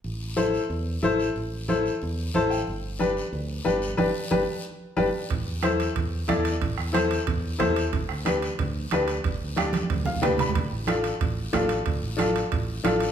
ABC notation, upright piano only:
X:1
M:4/4
L:1/8
Q:1/4=183
K:Am
V:1 name="Upright piano"
z2 [EAc] z3 [EAc] z | z2 [EAc] z3 [EAca] g | z2 [DGB] z3 [DGB] z | [DGB] z [DGB] z3 [DGB] z |
z2 [EAc] z3 [EAd] z | z2 [EAc] z3 [EAc] z | z2 [DGB] z3 [DGB] z | z2 [DGd] z2 f [DGBg] b |
z2 [DFA] z3 [DFA] z | z2 [DFA] z3 [DFA] z |]